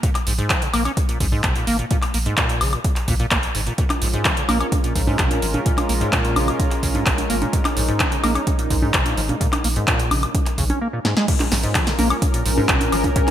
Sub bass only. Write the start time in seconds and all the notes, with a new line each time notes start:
0.27 A#1
0.74 A#1
1.20 A#1
1.44 A#1
1.67 G#1
2.14 A#1
2.61 A#1
3.08 A#1
3.31 A#1
3.55 G#1
4.02 A#1
4.49 A#1
4.95 A#1
5.19 A#1
5.42 G#1
5.89 A#1
6.36 A#1
6.83 A#1
7.06 A#1
7.30 G#1
7.77 A#1
8.24 A#1
8.71 A#1
8.94 A#1
9.17 G#1
9.64 A#1
10.11 A#1
10.58 A#1
11.52 A#1
11.99 A#1
12.46 A#1
12.69 A#1
12.93 G#1